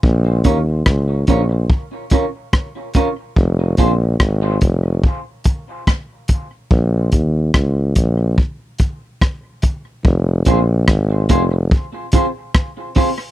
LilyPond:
<<
  \new Staff \with { instrumentName = "Clean electric guitar" } { \time 4/4 \key f \minor \tempo 4 = 72 r8 <des' f' bes' des''>8 r8 <des' f' bes' des''>8 r8 <des' f' bes' des''>8 r8 <des' f' bes' des''>8 | r8 <c' f' aes' c''>8 r2. | r1 | r8 <c' f' aes' c''>8 r8 <c' f' aes' c''>8 r8 <c' f' aes' c''>8 r8 <c' f' aes' c''>8 | }
  \new Staff \with { instrumentName = "Tuba" } { \clef bass \time 4/4 \key f \minor bes,,8 ees,8 des,8 bes,,8 r2 | f,,8 bes,,8 aes,,8 f,,8 r2 | bes,,8 ees,8 des,8 bes,,8 r2 | f,,8 bes,,8 aes,,8 f,,8 r2 | }
  \new DrumStaff \with { instrumentName = "Drums" } \drummode { \time 4/4 bd8 <hh bd>8 <bd ss>8 <hh bd>8 bd8 <hh bd>8 <bd ss>8 <hh bd>8 | bd8 <hh bd>8 <bd ss>8 <hh bd>8 bd8 <hh bd>8 <bd ss>8 <hh bd>8 | bd8 <hh bd>8 <bd ss>8 <hh bd>8 bd8 <hh bd>8 <bd ss>8 <hh bd>8 | bd8 <hh bd>8 <bd ss>8 <hh bd>8 bd8 <hh bd>8 <bd ss>8 <hho bd>8 | }
>>